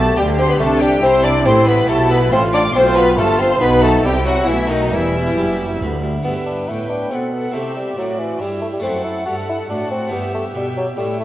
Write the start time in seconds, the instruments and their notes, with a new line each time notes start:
Already playing: double bass section B1, harpsichord B2 D4, cello section B2, bassoon A3, viola section G4, violin section A5
0.16 double bass section D2, harpsichord D3 G4, cello section D3, bassoon G3, viola section G4, violin section G4 G5
0.39 bassoon C4, harpsichord D4, violin section C5 C6
0.49 bassoon B3, violin section B4 B5
0.60 double bass section C2, harpsichord C3 G4, cello section C3, bassoon A3, viola section D4, violin section A4 A5
0.81 bassoon G3, harpsichord D4, violin section G4 G5
1.02 double bass section C2, cello section C3, harpsichord C3, bassoon C4, viola section E4, violin section C5 C6
1.23 bassoon D4, harpsichord E4, violin section D5 D6
1.45 double bass section A1, cello section A2, harpsichord A2 G4, bassoon C4, viola section E4, violin section C5 C6
1.67 bassoon B3, harpsichord E4, violin section B4 B5
1.87 double bass section B1, cello section B2, harpsichord B2 G4, bassoon A3, violin section A4 A5
2.10 bassoon B3, harpsichord E4, violin section B4 B5
2.30 double bass section A1, cello section A2, harpsichord A2, bassoon C4, viola section F4, violin section C5 C6
2.53 bassoon D4, harpsichord F4, violin section D5 D6
2.74 double bass section B1, cello section B2, harpsichord B2 A3, bassoon C4, viola section F4, violin section C5 C6
2.96 bassoon B3, harpsichord F4, violin section B4 B5
3.17 double bass section G1, harpsichord G2 A4, cello section G2, bassoon A3, viola section F4, violin section A4 A5
3.39 bassoon C4, harpsichord F4, violin section C5 C6
3.60 double bass section B1, cello section B2, harpsichord B2, bassoon B3, viola section D#4, violin section B4 B5
3.83 bassoon A3, harpsichord D#4 F#4, violin section A4 A5
4.03 double bass section C2, cello section C3, harpsichord C3, bassoon G3, viola section E4, violin section G4 G5
4.25 bassoon F#3, harpsichord E4, violin section F#4 F#5
4.47 double bass section B1, cello section B2, harpsichord B2, bassoon E3, viola section A3, violin section E4 E5
4.69 bassoon D#3, harpsichord B3 F#4, violin section D#4 D#5
4.92 double bass section E1, cello section E2, harpsichord E2, bassoon E3, viola section G3, violin section E4 E5
5.16 harpsichord E4
5.36 double bass section F#1, cello section F#2, harpsichord F#2 G4
5.60 harpsichord E4
5.81 cello section D2, double bass section D2, harpsichord D2 B4
6.03 harpsichord E4
6.23 cello section G2, harpsichord G2 B3 E4, bassoon B3, viola section B4, violin section E5 G5
6.46 bassoon D4
6.68 cello section A2, harpsichord A2, bassoon E4, violin section E5 G5
6.90 bassoon D4
7.10 cello section B2, harpsichord B2, bassoon C4, viola section A4, violin section E5 F#5
7.33 bassoon B3
7.51 cello section C3, harpsichord C3 C4 E4, bassoon A3
7.56 viola section G4, violin section E5
7.76 bassoon G3
7.97 cello section A2, harpsichord A2, bassoon F#3, viola section F#4, violin section D5 E5
8.19 bassoon E3
8.40 cello section G2, harpsichord G2, bassoon G3, viola section E4, violin section E5 G5
8.62 bassoon A3
8.73 bassoon G3
8.80 cello section F#2, harpsichord A3 C4 E4, bassoon C4, viola section A4
8.84 harpsichord F#2, violin section F#5 A5
9.05 bassoon E4
9.26 cello section G2, harpsichord G2, bassoon F#4, violin section A5
9.49 bassoon E4
9.69 cello section A2, harpsichord A2, bassoon D4, viola section F#4, violin section A5
9.91 bassoon C4
10.07 harpsichord B3 E4
10.12 harpsichord G2, cello section G2, bassoon B3, viola section G4, violin section E5
10.34 bassoon A3
10.55 harpsichord B2, cello section B2, bassoon G3, violin section E5 G5
10.77 bassoon F#3
10.97 harpsichord A2, cello section A2, bassoon G3, viola section E4, violin section E5 G5
11.20 bassoon A3